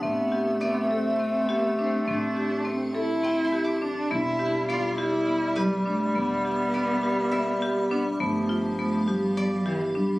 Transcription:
Already playing: guzheng A5, ambient pad C6
0.01 upright bass A1, clarinet A3, cello B3, marimba C4, ambient pad A4 G5
0.32 marimba G4
0.60 cello B3, marimba C4, guzheng D5
0.88 cello C4, marimba A4
1.20 marimba C4
1.47 cello B3, marimba G4
1.78 cello C4, marimba D4
2.06 upright bass A1, marimba C4, cello D4, ambient pad A5
2.37 marimba G4
2.65 marimba C4, cello C4
2.95 cello E4, marimba A4
3.23 marimba C4, guzheng G5
3.45 guzheng C6
3.52 marimba G4
3.64 guzheng D6
3.82 marimba D4, cello D4
4.11 upright bass E1, clarinet G3, marimba B3, cello E4, ambient pad G4 E5 D6
4.39 marimba G4
4.68 marimba B3, cello F4, guzheng D5
4.96 cello E4, marimba G4
5.27 marimba B3
5.56 cello G3, marimba G4, guzheng B4
5.86 cello A3, marimba D4
6.14 upright bass E1, cello B3, marimba B3
6.45 marimba G4
6.74 marimba B3, guzheng B4
7.03 marimba G4
7.31 marimba B3, guzheng E5
7.62 marimba G4
7.90 cello B3, marimba D4
8.19 upright bass G1, clarinet F3, cello A3, marimba B3, ambient pad F5 B5
8.49 marimba F4
8.77 cello A3, marimba B3
9.07 cello G3, marimba G4
9.37 marimba B3, guzheng D5
9.65 cello E3, marimba G4
9.95 cello G3, marimba D4

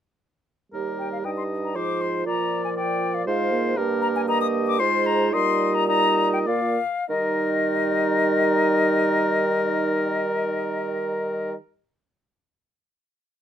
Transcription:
0.72 bassoon D#2, french horn G3, clarinet G4, oboe A#4
0.99 flute G5
1.12 flute F5
1.24 bassoon G2, clarinet D#4, oboe D#5, flute G5
1.37 flute C6
1.64 flute A#5
1.75 bassoon G#2, french horn F3, clarinet F4, oboe C5, flute D6
2.01 flute C6
2.26 bassoon A#2, french horn F3, clarinet F4, oboe D5, flute A#5
2.64 flute G#5
2.77 oboe D5, flute G5
3.14 flute F5
3.27 bassoon G#2, french horn G#3, clarinet F4, oboe C5, flute F5
3.52 french horn A#3
3.77 bassoon G2, french horn A#3, clarinet G4, oboe A#4
4.02 flute A#5
4.16 flute G#5
4.28 clarinet G4, oboe D#5, flute A#5
4.41 flute D#6
4.67 flute D6
4.79 bassoon G#2, french horn G#3, clarinet F4, oboe C5, flute C6
5.06 flute A#5
5.33 bassoon A#2, french horn G3, clarinet D#4, oboe D#5, flute C6
5.74 flute A#5
5.88 clarinet D#4, oboe D#5, flute A#5
6.33 flute G5
6.47 bassoon A#2, french horn A#3, clarinet F4, oboe D5, flute F5
7.10 bassoon D#3, french horn G3, clarinet D#4, oboe A#4, flute D#5

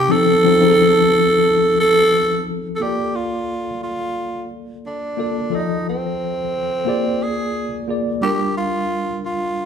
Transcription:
Already playing: tenor saxophone G4
0.09 tine electric piano F3 C4 D#4 A4, tenor saxophone A4
0.44 tine electric piano F3 C4 D#4 F4
0.60 tine electric piano F3 C4 D#4 G#4
0.70 tine electric piano A4
1.80 tenor saxophone A4
2.76 tenor saxophone A4
2.80 tine electric piano A#3 F4 A4 D5, tenor saxophone G4
3.15 tenor saxophone F4
3.83 tenor saxophone F4
4.86 tenor saxophone D4
5.17 tine electric piano A#3 F4 A4 D5
5.50 tine electric piano F3 F4 A4 D5
5.55 tenor saxophone D#4
5.60 tine electric piano D#5
5.89 tenor saxophone C4
6.85 tine electric piano A#3 F4 G#4 D5
7.23 tenor saxophone G#4
7.87 tine electric piano A#3 F4 G#4 D5
8.21 tine electric piano G3 D4 F4 A#4, tenor saxophone G4
8.57 tenor saxophone F4
9.25 tenor saxophone F4

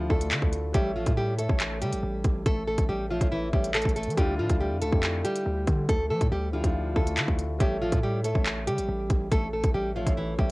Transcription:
Already playing: grand piano D3 D4 E4 F4 G4
0.09 808-style bass D2, grand piano D3 D4 E4 F4, nylon-string guitar A3 A4, kick
0.21 closed hi-hat
0.31 808-style bass D3, clap, closed hi-hat
0.42 808-style bass D2, kick
0.53 closed hi-hat
0.73 808-style bass A1, nylon-string guitar G3 G4, grand piano A3 A4 C#5 E5, kick, closed hi-hat
0.96 nylon-string guitar F3 F4
1.06 808-style bass A2, kick, closed hi-hat
1.17 nylon-string guitar G3 G4
1.37 grand piano A3 A4 C#5 E5, nylon-string guitar A3 A4, closed hi-hat
1.48 808-style bass A1, grand piano A3 A4 C#5 E5, kick
1.60 clap, closed hi-hat
1.82 808-style bass C#3, nylon-string guitar G3 G4, closed hi-hat
1.92 808-style bass A1, closed hi-hat
2.03 808-style bass A1
2.24 808-style bass A1, kick, closed hi-hat
2.46 808-style bass A1, nylon-string guitar A3 A4, kick, closed hi-hat
2.68 nylon-string guitar A3 A4
2.78 808-style bass A1, kick, closed hi-hat
2.89 808-style bass A1, nylon-string guitar G3 G4
3.09 nylon-string guitar F3 F4, grand piano A3 A4 C#5 E5
3.20 808-style bass A1, grand piano A3 A4 C#5 E5, kick, closed hi-hat
3.32 nylon-string guitar E3 E4
3.52 808-style bass A1, nylon-string guitar G3 G4, grand piano A3 A4 C#5 E5, kick
3.64 closed hi-hat
3.75 nylon-string guitar A3 A4, clap, closed hi-hat
3.82 808-style bass A1, kick, closed hi-hat
3.89 closed hi-hat
3.96 nylon-string guitar A3 A4, closed hi-hat
4.03 808-style bass E3, closed hi-hat
4.10 closed hi-hat
4.17 808-style bass D2, grand piano D3 D4 E4 F4, nylon-string guitar G3 G4, kick, closed hi-hat
4.39 808-style bass A2, nylon-string guitar F3 F4
4.49 808-style bass D2, kick, closed hi-hat
4.60 nylon-string guitar G3 G4
4.71 808-style bass F2
4.80 808-style bass D2, grand piano D3 D4 E4 F4, nylon-string guitar A3 A4, closed hi-hat
4.92 808-style bass F2, grand piano D3 D4 E4 G4, kick
5.03 clap, closed hi-hat
5.25 nylon-string guitar G3 G4, closed hi-hat
5.36 closed hi-hat
5.46 808-style bass D2
5.67 808-style bass D3, kick, closed hi-hat
5.89 808-style bass D2, nylon-string guitar A3 A4, kick, closed hi-hat
6.10 808-style bass F3, nylon-string guitar A3 A4
6.21 808-style bass A2, kick, closed hi-hat
6.32 808-style bass D2, nylon-string guitar G3 G4
6.52 grand piano D3 D4 E4 G4, nylon-string guitar F3 F4
6.63 808-style bass D2, grand piano D3 D4 E4 F4, kick, closed hi-hat
6.94 808-style bass D2, grand piano D3 D4 E4 F4, nylon-string guitar A3 A4, kick
7.07 closed hi-hat
7.17 808-style bass D3, clap, closed hi-hat
7.28 808-style bass D2, kick
7.39 closed hi-hat
7.59 808-style bass A1, nylon-string guitar G3 G4, grand piano A3 A4 C#5 E5, kick, closed hi-hat
7.82 nylon-string guitar F3 F4
7.92 808-style bass A2, kick, closed hi-hat
8.03 nylon-string guitar G3 G4
8.23 grand piano A3 A4 C#5 E5, nylon-string guitar A3 A4, closed hi-hat
8.34 808-style bass A1, grand piano A3 A4 C#5 E5, kick
8.46 clap, closed hi-hat
8.67 808-style bass C#3, nylon-string guitar G3 G4, closed hi-hat
8.78 808-style bass A1, closed hi-hat
8.89 808-style bass A1
9.10 808-style bass A1, kick, closed hi-hat
9.32 808-style bass A1, nylon-string guitar A3 A4, kick, closed hi-hat
9.53 nylon-string guitar A3 A4
9.64 808-style bass A1, kick, closed hi-hat
9.74 808-style bass A1, nylon-string guitar G3 G4
9.95 nylon-string guitar F3 F4, grand piano A3 A4 C#5 E5
10.06 808-style bass A1, grand piano A3 A4 C#5 E5, kick, closed hi-hat
10.17 nylon-string guitar E3 E4
10.38 808-style bass A1, nylon-string guitar G3 G4, grand piano A3 A4 C#5 E5, kick

